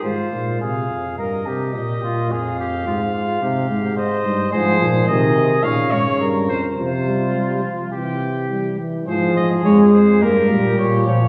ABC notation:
X:1
M:4/4
L:1/8
Q:1/4=106
K:Fphr
V:1 name="Trumpet"
c2 f2 e2 e2 | f6 e2 | [K:Fm] c2 e2 f d2 c | c3 z g3 z |
c e d c B2 d d |]
V:2 name="Flugelhorn"
F2 A2 B =G2 F | A =G F F G2 c2 | [K:Fm] A2 A2 d2 B z | F4 G3 z |
A4 G4 |]
V:3 name="Trombone" clef=bass
z8 | z8 | [K:Fm] F,2 E,2 D,4 | F, G, G, F, =E,2 G, E, |
F,2 A,2 B, G,2 F, |]
V:4 name="Bass trombone" clef=bass
A,, B,, C, F,, =G,, C, B,, B,, | F,,2 A,,2 C, A,,2 =G,, | [K:Fm] A,, B,, C,2 B,, A,, G,, F,, | C,3 z C,3 z |
A,, A,, F,, F,, G,, B,, B,,2 |]